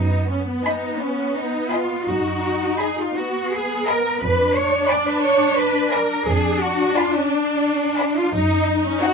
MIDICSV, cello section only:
0, 0, Header, 1, 2, 480
1, 0, Start_track
1, 0, Tempo, 712589
1, 2845, Time_signature, 12, 3, 24, 8
1, 2846, Tempo, 686499
1, 6279, End_track
2, 0, Start_track
2, 0, Title_t, "Cello section"
2, 0, Program_c, 0, 48
2, 0, Note_on_c, 0, 63, 70
2, 200, Note_on_c, 0, 61, 62
2, 203, Note_off_c, 0, 63, 0
2, 318, Note_off_c, 0, 61, 0
2, 328, Note_on_c, 0, 59, 62
2, 435, Note_on_c, 0, 63, 63
2, 440, Note_off_c, 0, 59, 0
2, 670, Note_on_c, 0, 61, 70
2, 673, Note_off_c, 0, 63, 0
2, 914, Note_on_c, 0, 63, 67
2, 915, Note_off_c, 0, 61, 0
2, 1159, Note_off_c, 0, 63, 0
2, 1160, Note_on_c, 0, 65, 66
2, 1399, Note_on_c, 0, 66, 72
2, 1400, Note_off_c, 0, 65, 0
2, 1882, Note_off_c, 0, 66, 0
2, 1883, Note_on_c, 0, 68, 69
2, 2003, Note_off_c, 0, 68, 0
2, 2016, Note_on_c, 0, 65, 64
2, 2131, Note_on_c, 0, 66, 71
2, 2134, Note_off_c, 0, 65, 0
2, 2368, Note_on_c, 0, 68, 81
2, 2374, Note_off_c, 0, 66, 0
2, 2609, Note_off_c, 0, 68, 0
2, 2610, Note_on_c, 0, 70, 77
2, 2843, Note_on_c, 0, 71, 86
2, 2844, Note_off_c, 0, 70, 0
2, 3076, Note_off_c, 0, 71, 0
2, 3079, Note_on_c, 0, 73, 83
2, 3314, Note_on_c, 0, 74, 77
2, 3315, Note_off_c, 0, 73, 0
2, 3433, Note_off_c, 0, 74, 0
2, 3433, Note_on_c, 0, 71, 83
2, 3551, Note_on_c, 0, 73, 88
2, 3552, Note_off_c, 0, 71, 0
2, 3786, Note_off_c, 0, 73, 0
2, 3787, Note_on_c, 0, 71, 86
2, 4031, Note_off_c, 0, 71, 0
2, 4036, Note_on_c, 0, 70, 76
2, 4273, Note_on_c, 0, 68, 81
2, 4281, Note_off_c, 0, 70, 0
2, 4516, Note_on_c, 0, 66, 82
2, 4522, Note_off_c, 0, 68, 0
2, 4763, Note_off_c, 0, 66, 0
2, 4764, Note_on_c, 0, 65, 80
2, 4887, Note_off_c, 0, 65, 0
2, 4890, Note_on_c, 0, 61, 72
2, 5005, Note_on_c, 0, 62, 82
2, 5010, Note_off_c, 0, 61, 0
2, 5608, Note_off_c, 0, 62, 0
2, 5610, Note_on_c, 0, 65, 83
2, 5722, Note_on_c, 0, 63, 90
2, 5730, Note_off_c, 0, 65, 0
2, 6076, Note_off_c, 0, 63, 0
2, 6092, Note_on_c, 0, 61, 78
2, 6205, Note_on_c, 0, 66, 82
2, 6206, Note_off_c, 0, 61, 0
2, 6279, Note_off_c, 0, 66, 0
2, 6279, End_track
0, 0, End_of_file